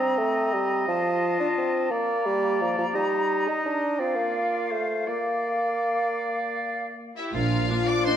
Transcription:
Already playing: bassoon C4, clarinet C4, oboe D#5, flute A#5
0.18 bassoon A3
0.53 bassoon G3
0.88 bassoon F3, clarinet F4, flute A5
1.40 bassoon D4
1.58 bassoon C4
1.91 clarinet A#3, bassoon A#3, oboe D5, flute A#5
2.26 bassoon G3
2.61 bassoon F3
2.78 bassoon F3
2.94 bassoon G3, clarinet D#4, oboe D#5
3.48 bassoon D#4
3.66 bassoon D4
3.99 bassoon C4, clarinet F4, oboe D5, flute F5
4.16 bassoon A#3
4.71 bassoon A3, oboe C5
5.07 clarinet A#3, bassoon A#3, oboe D5, flute F5
7.16 violin section E4 E5, oboe E4, flute G4
7.34 double bass section A#1, cello section A#2, bassoon F3, clarinet D4, french horn section D4, violin section F4 F5, oboe F4, flute A#4
7.69 viola section A#3 D4, french horn section F4
7.87 violin section D5 D6, oboe D5, flute F5
8.05 viola section A#3 D4, oboe C5, violin section C5 C6, flute D#5

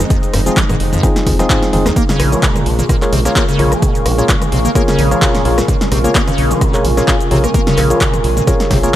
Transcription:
Already playing: analog synth pad D#3 G#3 C4 D#4
0.00 shaker
0.10 acid bass F2, kick, closed hi-hat, shaker
0.23 closed hi-hat, shaker
0.34 analog synth bass F1, acid bass G2, cross-stick, open hi-hat
0.46 acid bass F3, tine electric piano C4 D#4 F4 G#4, closed hi-hat, shaker
0.57 acid bass F3, kick, clap, closed hi-hat, shaker
0.69 acid bass G#2, cross-stick, closed hi-hat, mid tom, shaker
0.80 analog synth bass F1, open hi-hat
0.93 acid bass F2, closed hi-hat, mid tom, shaker
1.03 acid bass F2, tine electric piano C4 D#4 F4 G#4, kick, cross-stick, closed hi-hat, shaker
1.16 snare, closed hi-hat, shaker
1.27 analog synth bass F1, acid bass F2, kick, open hi-hat, mid tom
1.39 acid bass F3, tine electric piano C4 D#4 F4 G#4, cross-stick, snare, closed hi-hat, shaker
1.50 acid bass G#2, kick, clap, closed hi-hat, shaker
1.63 snare, closed hi-hat, shaker
1.73 analog synth bass F1, acid bass F2, tine electric piano C4 D#4 F4 G#4, open hi-hat, mid tom
1.86 acid bass D#2, cross-stick, snare, closed hi-hat, shaker
1.96 analog synth pad C#3 A#3 F4, acid bass A#3, ambient pad F4, kick, closed hi-hat, shaker
2.09 acid bass C#3, snare, closed hi-hat, shaker
2.17 analog synth bass A#1, ambient pad C#6, cross-stick, open hi-hat
2.32 acid bass F3, tine electric piano F4 G#4 A#4 C#5, closed hi-hat, shaker
2.40 acid bass A#2, ambient pad A#4, kick, clap, closed hi-hat, shaker
2.56 cross-stick, closed hi-hat, mid tom, shaker
2.66 analog synth bass A#1, acid bass C3, ambient pad G#5, open hi-hat
2.79 acid bass A#2, closed hi-hat, mid tom, shaker
2.89 acid bass A#2, kick, cross-stick, closed hi-hat, shaker
3.02 tine electric piano F4 G#4 A#4 C#5, clap, closed hi-hat, shaker
3.13 analog synth bass A#1, acid bass C3, open hi-hat, mid tom
3.25 acid bass A#3, tine electric piano F4 G#4 A#4 C#5, cross-stick, snare, closed hi-hat, shaker
3.36 acid bass A#3, kick, clap, closed hi-hat, shaker
3.49 acid bass C#3, closed hi-hat, shaker
3.59 analog synth bass A#1, tine electric piano F4 G#4 A#4 C#5, open hi-hat, mid tom
3.72 acid bass F3, cross-stick, closed hi-hat, shaker
3.82 acid bass A#2, kick, closed hi-hat, shaker
3.95 closed hi-hat, shaker
4.06 analog synth bass A#1, acid bass C3, cross-stick, open hi-hat
4.18 acid bass A#2, tine electric piano F4 G#4 A#4 C#5, closed hi-hat, shaker
4.29 acid bass A#2, kick, clap, closed hi-hat, shaker
4.42 cross-stick, closed hi-hat, mid tom, shaker
4.52 analog synth bass A#1, acid bass C3, open hi-hat
4.65 acid bass A#3, closed hi-hat, mid tom, shaker
4.75 acid bass A#3, tine electric piano F4 G#4 A#4 C#5, kick, cross-stick, closed hi-hat, shaker
4.88 acid bass C#3, snare, closed hi-hat, shaker
4.99 analog synth bass A#1, open hi-hat, mid tom
5.11 acid bass F3, tine electric piano F4 G#4 A#4 C#5, cross-stick, closed hi-hat, shaker
5.22 acid bass A#2, kick, clap, closed hi-hat, shaker
5.35 snare, closed hi-hat, shaker
5.45 analog synth bass A#1, acid bass C3, tine electric piano F4 G#4 A#4 C#5, open hi-hat
5.58 acid bass A#2, cross-stick, snare, closed hi-hat, shaker
5.68 acid bass A#2, analog synth pad C3, kick, closed hi-hat, shaker
5.81 snare, closed hi-hat, shaker
5.92 analog synth bass A#1, acid bass C3, cross-stick, open hi-hat
6.04 acid bass A#3, tine electric piano F4 G#4 A#4 C#5, closed hi-hat, shaker
6.15 acid bass A#3, kick, clap, closed hi-hat, shaker
6.27 acid bass C#3, cross-stick, closed hi-hat, mid tom, shaker
6.38 analog synth bass A#1, open hi-hat
6.51 acid bass F3, closed hi-hat, mid tom, shaker
6.61 acid bass A#2, kick, cross-stick, closed hi-hat, shaker
6.74 tine electric piano F4 G#4 A#4 C#5, clap, closed hi-hat, shaker
6.85 analog synth bass A#1, acid bass C3, open hi-hat, mid tom
6.97 acid bass A#2, tine electric piano F4 G#4 A#4 C#5, cross-stick, snare, closed hi-hat, shaker
7.08 acid bass A#2, kick, clap, closed hi-hat, shaker
7.21 closed hi-hat, shaker
7.31 analog synth bass A#1, acid bass C3, tine electric piano F4 G#4 A#4 C#5, open hi-hat, mid tom
7.44 acid bass A#3, cross-stick, closed hi-hat, shaker
7.54 acid bass A#3, kick, closed hi-hat, shaker
7.67 acid bass C#3, snare, closed hi-hat, shaker
7.78 analog synth bass A#1, cross-stick, clap, open hi-hat
7.90 acid bass F3, tine electric piano F4 G#4 A#4 C#5, closed hi-hat, shaker
8.01 acid bass A#2, kick, clap, closed hi-hat, shaker
8.14 cross-stick, closed hi-hat, mid tom, shaker
8.24 analog synth bass A#1, acid bass C3, open hi-hat
8.37 acid bass A#2, closed hi-hat, mid tom, shaker
8.47 acid bass A#2, tine electric piano F4 G#4 A#4 C#5, kick, cross-stick, closed hi-hat, shaker
8.60 snare, closed hi-hat, shaker
8.71 analog synth bass A#1, acid bass C3, kick, snare, open hi-hat, mid tom
8.83 acid bass A#3, tine electric piano F4 G#4 A#4 C#5, closed hi-hat, shaker

